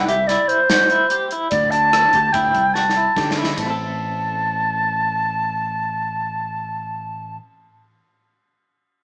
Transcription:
Already playing: C2
0.08 G4 E5, closed hi-hat
0.27 E4 D5, snare, closed hi-hat
0.48 C5, closed hi-hat
0.70 F#4, snare, closed hi-hat
0.90 E4, closed hi-hat
1.10 G4, closed hi-hat
1.31 E4, closed hi-hat
1.50 D2 D5, kick, closed hi-hat
1.71 D4 A5, closed hi-hat
1.93 D4, cross-stick, closed hi-hat
2.13 D2 G4, kick, closed hi-hat
2.33 D2 E4 G5, kick, closed hi-hat
2.54 C2, kick, closed hi-hat
2.74 F#4 A5, snare
2.89 snare
2.97 E4
3.16 D3 G4, kick, snare
3.31 snare
3.37 E4
3.44 snare
3.57 A1 A3 A5, kick, ride
3.62 C4
3.66 E4
3.70 A4

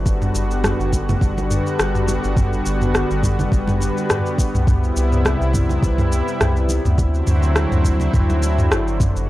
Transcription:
Already playing: G1 D3 G3 B3 F#4
0.06 kick, shaker
0.22 mid tom, shaker
0.35 G1, shaker
0.51 shaker
0.64 cross-stick, mid tom, high conga, shaker
0.79 G1, shaker
0.92 kick, high conga, shaker
1.09 mid tom, low conga, shaker
1.21 G1, kick, shaker
1.38 high conga, shaker
1.51 mid tom, shaker
1.67 shaker
1.79 G1, cross-stick, shaker
1.95 mid tom, shaker
2.08 high conga, shaker
2.24 G1, shaker
2.37 kick, mid tom, shaker
2.53 shaker
2.66 G1, shaker
2.81 mid tom, shaker
2.94 cross-stick, high conga, shaker
3.11 G1, shaker
3.23 kick, mid tom, high conga, shaker
3.39 low conga, shaker
3.52 G1, kick, shaker
3.67 mid tom, high conga, shaker
3.80 high conga, shaker
3.98 shaker
4.10 G2, cross-stick, mid tom, shaker
4.26 shaker
4.38 kick, shaker
4.54 C2, mid tom, shaker
4.67 C3 E4, kick, mid tom, shaker
4.84 shaker
4.96 C2, shaker
5.12 mid tom, shaker
5.25 cross-stick, high conga, shaker
5.41 C2, shaker
5.53 kick, mid tom, high conga, shaker
5.69 low conga, shaker
5.83 C2, kick, shaker
5.98 mid tom, high conga, shaker
6.12 shaker
6.28 shaker
6.40 C2, cross-stick, mid tom, shaker
6.56 shaker
6.69 high conga, shaker
6.85 D2, mid tom, shaker
6.98 D3 F#3 C4 E4, kick, shaker
7.14 shaker
7.27 D2, mid tom, shaker
7.43 shaker
7.56 cross-stick, high conga, shaker
7.72 D2, mid tom, shaker
7.85 kick, high conga, shaker
8.00 low conga, shaker
8.13 D2, kick, mid tom, shaker
8.30 high conga, shaker
8.42 high conga, shaker
8.58 mid tom, shaker
8.72 G1, cross-stick, shaker
8.88 shaker
9.00 B2 G3 F#4, kick, mid tom, shaker
9.16 G1, shaker

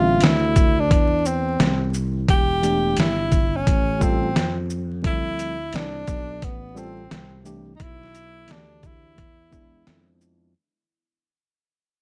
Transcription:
Already playing: A1 D3 G3 C4 F4 E5
0.20 D2 E4, snare, closed hi-hat
0.56 kick, closed hi-hat, shaker
0.80 D4
0.91 E2, kick, closed hi-hat
1.25 C4, shaker
1.60 C2, snare, closed hi-hat
1.94 shaker
2.28 E1 G4, kick, closed hi-hat
2.61 E3 A3 D4 G4, closed hi-hat, shaker
2.97 G1 E4, snare, closed hi-hat
3.32 kick, closed hi-hat, shaker
3.56 C#4
3.67 A1, kick, closed hi-hat
3.99 G3 C4 F4 A4, kick, shaker
4.04 C4
4.36 F2, snare, closed hi-hat
4.70 shaker
5.03 D2 F3 G3 C4 A4, kick, closed hi-hat
5.07 E4
5.39 closed hi-hat, shaker
5.73 C2 D4, snare, closed hi-hat
6.07 B1, kick, closed hi-hat, shaker
6.42 A1 B3, kick, closed hi-hat
6.75 G3 C4 F4 A4, shaker
7.11 C2, snare, closed hi-hat
7.44 E3 A3 D4 G4, shaker
7.76 D#4, kick, closed hi-hat
7.80 B1 E4
8.03 snare
8.15 closed hi-hat, shaker
8.47 D2 E3 A3 D4 G4, snare, closed hi-hat
8.52 D4
8.83 E4, kick, closed hi-hat, shaker
9.18 E2, kick, closed hi-hat
9.50 G#3 B3 D4 E4, kick, shaker
9.87 F2, snare, closed hi-hat
10.21 shaker

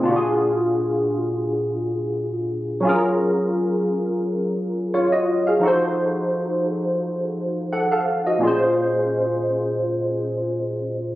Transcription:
0.01 A#2 D4
0.05 F4 F#4
0.10 G4
0.16 G#4
2.80 F#3 C#4
2.85 F4 G#4
2.89 A#4
4.94 F4 C#5
5.12 F#4 D#5
5.47 G#4 F5
5.59 F3 D#4
5.63 F#4 A4
5.68 C5
7.73 A4 F#5
7.92 A4 F5
8.27 F#4 D#5
8.39 A#2 C#4
8.43 F4 G#4
8.47 C5

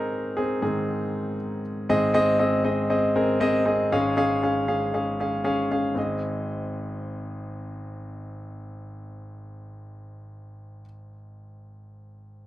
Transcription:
Already playing: C4 C#4 D#4 G#4 A#4 C5
0.37 C4 G#4
0.62 G#2 D#3 C4 G#4
1.89 G#1 G#2 C4 G#4 D#5
2.14 C4 G#4 D#5
2.39 C4 G#4 D#5
2.64 C4 G#4 D#5
2.90 C4 G#4 D#5
3.16 C4 G#4 A#4
3.40 C4 G#4 D#5
3.66 C4 G#4 D#5
3.92 G#1 G#2 C#4 G#4 F5
4.17 C#4 G#4 F5
4.43 C#4 G#4 F5
4.68 C#4 G#4 F5
4.94 C#4 G#4 F5
5.20 C#4 G#4 F5
5.44 C#4 G#4 F5
5.71 C#4 G#4 F5
5.95 G#1 C4 G#4 D#5

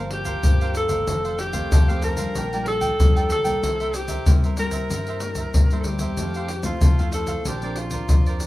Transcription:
Already playing: G1 G2 F3 A#3 C4 F5
0.00 A#4 C5
0.11 G4, muted cavaquinho stroke, pandeiro
0.25 A#4 C5 F5, pandeiro, shaker, surdo
0.43 G2 F3 A#3 C4, pandeiro, shaker, surdo
0.61 A#4 C5 F5, pandeiro, shaker
0.75 A4, pandeiro, shaker
0.89 G1 D#3 A3 C4 A#4 C5 F5, pandeiro, shaker, surdo
1.07 F1 F2 D#4 A4 C5 F5, pandeiro, shaker, surdo
1.25 A4 C5 F5, pandeiro, shaker
1.39 G4, muted cavaquinho stroke, pandeiro, shaker
1.53 D#3 A3 C4 A4 C5 F5, pandeiro, shaker, surdo
1.72 F2 C3 D#4 A4 C5 F5, pandeiro, shaker, surdo
1.88 D#3 A3 C4 A4 C5 F5, pandeiro, shaker
2.02 D#4 A4 A#4 C5 F5, pandeiro, shaker, surdo
2.17 G3 D4 F4 A4 C5 F5, pandeiro, shaker, surdo
2.35 A#1 A#2 D4 A#4 D5 G5, pandeiro, shaker, surdo
2.53 G3 D4 F4 A#4 D5 G5, pandeiro, shaker
2.66 A4, muted cavaquinho stroke, pandeiro
2.81 D5 G5, pandeiro, shaker, surdo
2.99 F2 F3 G3 D4 F4, pandeiro, shaker, surdo
3.16 A#4 D5 G5, pandeiro, shaker
3.30 A4, pandeiro, shaker
3.44 A#1 G3 A#3 E4 A#4 D5 G5, pandeiro, shaker, surdo
3.63 C2 C3 E4 A#4 C5 E5, pandeiro, shaker, surdo
3.80 A#4 C5 E5, pandeiro, shaker
3.94 G4, muted cavaquinho stroke, pandeiro, shaker
4.08 A#4 C5 E5, pandeiro, shaker, surdo
4.26 G2 C3 G3 A#3 E4 A#4 C5 E5, pandeiro, shaker, surdo
4.44 A#4 C5 E5, pandeiro, shaker
4.57 G3 A#3 E4 A#4 C5 E5, pandeiro, shaker
4.71 A#4 C5 E5, pandeiro, shaker, surdo
4.90 G2 C3 E4 A#4 C5 E5, pandeiro, shaker, surdo
5.07 A#4 C5 E5, pandeiro, shaker
5.20 G3 A#3 E4, muted cavaquinho stroke, pandeiro, shaker
5.35 A#4 C5 E5, pandeiro, shaker, surdo
5.54 G2, pandeiro, shaker, surdo
5.71 G3 A#3 E4 A#4 C5 E5, pandeiro, shaker
5.80 A4
5.84 D2 G4, pandeiro, shaker
5.99 E2 A#4 C5 E5, pandeiro, shaker, surdo
6.17 F2 F3 A3 C4 E4 A4 C5 F5, pandeiro, shaker, surdo
6.34 A4 C5 F5, pandeiro, shaker
6.48 muted cavaquinho stroke, pandeiro
6.63 A3 C4 E4 F4 A4 C5 F5, pandeiro, shaker, surdo
6.81 F2 C3 E4 A4 C5 F5, pandeiro, shaker, surdo
6.99 A3 C4 E4 A4 C5 F5, pandeiro, shaker
7.12 E4 A4 C5 F5, pandeiro, shaker
7.27 A4 C5 F5, pandeiro, shaker, surdo
7.45 A#1 A#2 F3 C4 D4 G4 A#4 C5 D5, pandeiro, shaker, surdo
7.62 F3 C4 D4 A#4 C5 D5, pandeiro, shaker
7.76 F4, muted cavaquinho stroke, pandeiro
7.91 A#4 C5 D5, pandeiro, shaker, surdo
8.09 F2 F3 C4 D4, pandeiro, shaker, surdo
8.26 A#4 C5 D5, pandeiro, shaker
8.40 pandeiro, shaker

